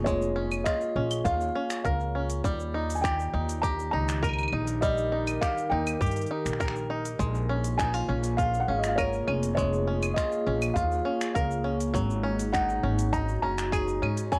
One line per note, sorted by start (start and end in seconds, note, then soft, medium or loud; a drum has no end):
0.00 0.61 F1 medium
0.00 3.97 A#3 medium
0.00 0.35 C#4 medium
0.00 0.65 F4 medium
0.00 3.43 F4 medium
0.00 2.45 G#4 medium
0.00 1.84 A#4 medium
0.00 4.35 C#5 medium
0.04 2.44 G#3 medium
0.04 0.67 C#5 loud
0.04 kick loud
0.04 open hi-hat soft
0.04 shaker medium
0.22 shaker soft
0.36 0.95 C#4 medium
0.51 claves medium
0.51 shaker medium
0.64 1.24 F4 medium
0.64 1.26 D#5 medium
0.64 finger snap medium
0.64 kick loud
0.64 open hi-hat soft
0.64 shaker medium
0.81 shaker soft
0.96 1.19 A#1 medium
0.96 1.54 C#4 medium
1.11 open hi-hat medium
1.11 claves medium
1.11 shaker medium
1.24 1.49 D#2 loud
1.24 2.50 F4 medium
1.24 1.83 F5 medium
1.24 kick loud
1.24 open hi-hat soft
1.24 shaker medium
1.41 shaker soft
1.55 2.14 C#4 medium
1.70 finger snap medium
1.70 open hi-hat medium
1.70 shaker medium
1.84 2.39 C#2 medium
1.84 3.25 A#4 medium
1.84 2.26 F5 medium
1.84 kick loud
1.84 open hi-hat soft
1.84 shaker medium
2.00 shaker soft
2.15 2.44 C#4 medium
2.30 open hi-hat medium
2.30 shaker medium
2.44 3.28 D#2 loud
2.44 7.20 D#3 medium
2.44 4.81 G3 medium
2.44 kick loud
2.44 open hi-hat soft
2.44 shaker medium
2.60 shaker soft
2.74 3.32 D#4 medium
2.90 open hi-hat soft
2.90 shaker medium
2.92 7.20 G4 medium
2.92 3.03 G#5 medium
2.92 shaker soft
2.97 shaker soft
3.01 3.62 G4 medium
3.01 3.64 G5 medium
3.01 finger snap medium
3.01 kick loud
3.01 open hi-hat soft
3.01 shaker medium
3.12 8.31 D#4 medium
3.20 shaker soft
3.34 3.88 D#2 loud
3.34 3.92 D#4 medium
3.49 open hi-hat medium
3.49 shaker medium
3.62 5.41 G4 medium
3.62 3.90 A#5 loud
3.62 kick loud
3.62 open hi-hat soft
3.62 shaker medium
3.79 shaker soft
3.91 4.47 C#2 medium
3.91 4.52 D#4 medium
3.91 4.48 A#5 loud
4.09 finger snap medium
4.09 open hi-hat medium
4.09 shaker medium
4.23 6.59 A#4 medium
4.23 kick loud
4.23 open hi-hat soft
4.23 claves soft
4.23 shaker medium
4.29 claves soft
4.33 claves soft
4.39 claves soft
4.39 shaker soft
4.43 claves medium
4.48 claves medium
4.52 5.36 A#1 medium
4.52 5.11 D#4 medium
4.52 claves medium
4.59 9.10 A#4 medium
4.68 open hi-hat medium
4.68 shaker medium
4.81 7.20 G3 medium
4.81 5.43 D#5 loud
4.81 kick loud
4.81 open hi-hat soft
4.81 shaker medium
4.98 shaker soft
5.12 5.70 D#4 medium
5.27 open hi-hat soft
5.27 claves medium
5.27 shaker medium
5.41 6.00 G4 medium
5.41 5.72 F5 medium
5.41 finger snap medium
5.41 kick loud
5.41 open hi-hat soft
5.41 shaker medium
5.58 shaker soft
5.70 5.95 D#2 loud
5.70 6.30 D#4 medium
5.70 6.85 G5 loud
5.87 open hi-hat medium
5.87 claves medium
5.87 shaker medium
6.01 6.24 G2 medium
6.01 7.26 G4 medium
6.01 kick loud
6.01 open hi-hat soft
6.01 shaker medium
6.06 open hi-hat soft
6.11 open hi-hat soft
6.16 open hi-hat soft
6.16 shaker soft
6.22 open hi-hat soft
6.26 open hi-hat soft
6.31 6.89 D#4 medium
6.46 7.15 A#1 medium
6.46 finger snap soft
6.46 open hi-hat medium
6.46 shaker medium
6.53 finger snap soft
6.60 8.00 A#4 medium
6.60 finger snap medium
6.60 kick loud
6.60 open hi-hat soft
6.60 shaker medium
6.68 finger snap medium
6.76 shaker soft
6.90 7.26 D#4 medium
7.05 open hi-hat soft
7.05 shaker medium
7.19 8.03 A#1 loud
7.19 9.56 G#3 medium
7.19 12.95 A#3 medium
7.19 kick loud
7.19 open hi-hat soft
7.19 shaker medium
7.35 shaker soft
7.49 8.08 C#4 medium
7.49 11.95 F4 medium
7.64 open hi-hat medium
7.64 shaker medium
7.78 7.94 D#4 medium
7.78 8.40 G#5 loud
7.78 finger snap medium
7.78 kick medium
7.78 open hi-hat soft
7.78 shaker medium
7.88 12.98 G#4 medium
7.94 8.37 F4 medium
7.94 shaker soft
8.09 8.63 A#1 loud
8.09 8.68 C#4 medium
8.24 open hi-hat medium
8.24 shaker medium
8.37 8.97 F4 medium
8.37 8.59 F5 loud
8.37 kick loud
8.37 open hi-hat soft
8.37 shaker medium
8.54 shaker soft
8.60 8.70 F#5 medium
8.68 9.22 G#1 medium
8.68 9.27 C#4 medium
8.68 8.80 F5 medium
8.75 14.39 C#5 medium
8.75 8.88 D#5 medium
8.84 finger snap medium
8.84 open hi-hat soft
8.84 shaker medium
8.88 8.98 F5 medium
8.96 11.34 A#4 medium
8.96 9.53 C#5 medium
8.96 kick loud
8.96 open hi-hat soft
8.96 claves medium
8.96 shaker medium
9.13 shaker soft
9.27 10.12 F1 medium
9.27 9.87 C#4 medium
9.27 claves medium
9.43 open hi-hat medium
9.43 shaker medium
9.55 11.93 G#3 medium
9.55 10.17 C#5 loud
9.55 kick loud
9.55 open hi-hat soft
9.55 shaker medium
9.73 shaker soft
9.87 10.46 C#4 medium
10.03 open hi-hat medium
10.03 claves medium
10.03 shaker medium
10.14 10.75 F4 medium
10.14 10.77 D#5 medium
10.14 finger snap medium
10.14 kick loud
10.14 open hi-hat soft
10.14 shaker medium
10.32 shaker soft
10.46 10.70 A#1 loud
10.46 11.05 C#4 medium
10.62 open hi-hat medium
10.62 claves medium
10.62 shaker medium
10.74 10.99 D#2 loud
10.74 12.01 F4 medium
10.74 11.33 F5 medium
10.74 kick medium
10.74 open hi-hat soft
10.74 shaker medium
10.92 shaker soft
11.05 11.64 C#4 medium
11.21 finger snap medium
11.21 open hi-hat medium
11.21 shaker medium
11.34 11.90 C#2 medium
11.34 12.01 A#4 medium
11.34 11.76 F5 medium
11.34 kick medium
11.34 open hi-hat soft
11.34 shaker medium
11.51 shaker soft
11.64 12.23 C#4 medium
11.80 open hi-hat medium
11.80 shaker medium
11.94 12.79 G#1 loud
11.94 14.31 F#3 medium
11.94 14.39 G#3 medium
11.94 kick medium
11.94 open hi-hat soft
11.94 shaker medium
12.06 14.39 D#4 medium
12.10 shaker soft
12.23 12.83 C#4 medium
12.39 open hi-hat medium
12.39 shaker medium
12.52 13.12 D#4 medium
12.52 13.15 F#5 loud
12.52 finger snap medium
12.52 kick medium
12.52 open hi-hat soft
12.52 shaker medium
12.69 shaker soft
12.83 13.38 G#1 loud
12.83 13.43 C#4 medium
12.97 14.39 F#4 medium
12.97 open hi-hat medium
12.97 shaker medium
13.13 13.43 D#4 medium
13.13 13.41 A#5 loud
13.13 kick loud
13.13 open hi-hat soft
13.13 shaker soft
13.29 shaker soft
13.42 13.97 F#1 medium
13.42 14.02 C#4 medium
13.42 14.28 A#5 loud
13.58 finger snap medium
13.58 open hi-hat medium
13.58 shaker medium
13.72 14.39 G#4 medium
13.72 kick medium
13.72 open hi-hat soft
13.72 claves medium
13.72 shaker medium
13.88 shaker soft
14.02 14.39 G#2 medium
14.02 14.39 C#4 medium
14.02 claves medium
14.17 open hi-hat medium
14.17 shaker medium
14.32 14.39 F#3 medium
14.32 14.39 G#5 loud
14.32 kick loud
14.32 open hi-hat soft
14.32 shaker medium